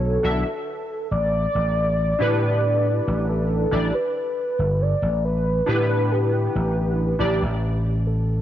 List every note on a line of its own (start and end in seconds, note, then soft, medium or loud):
0.00 0.17 B1 loud
0.00 0.19 D4 medium
0.00 0.19 F#4 medium
0.00 0.20 A4 medium
0.00 1.08 A4 loud
0.00 0.20 C#5 loud
0.23 0.42 B1 medium
0.23 0.45 D4 medium
0.23 0.45 F#4 medium
0.23 0.46 A4 medium
0.23 0.46 E5 medium
1.11 1.45 A1 medium
1.11 3.25 D5 loud
1.55 2.13 A1 medium
2.19 2.99 A2 medium
2.19 3.66 D4 medium
2.19 3.67 E4 medium
2.19 3.67 G4 medium
2.19 3.68 B4 loud
3.07 3.64 A1 medium
3.29 3.91 A4 loud
3.71 3.90 A1 loud
3.71 3.93 D4 medium
3.71 3.93 E4 medium
3.71 3.94 G4 medium
3.71 3.94 D5 medium
3.94 4.14 B4 medium
4.16 4.83 B4 loud
4.59 4.93 G1 medium
4.82 5.24 D5 loud
5.02 5.60 A1 medium
5.25 5.85 B4 loud
5.66 6.47 A2 medium
5.66 7.14 D4 medium
5.66 7.14 E4 medium
5.66 7.15 G4 medium
5.66 7.15 B4 loud
5.89 6.13 B4 medium
6.12 6.32 G4 medium
6.33 7.16 G4 medium
6.55 7.12 A1 loud
7.19 7.37 A1 medium
7.19 7.41 D4 medium
7.19 7.41 E4 medium
7.19 7.41 G4 medium
7.19 7.42 D5 medium
7.43 8.42 A1 loud
8.07 8.42 A4 loud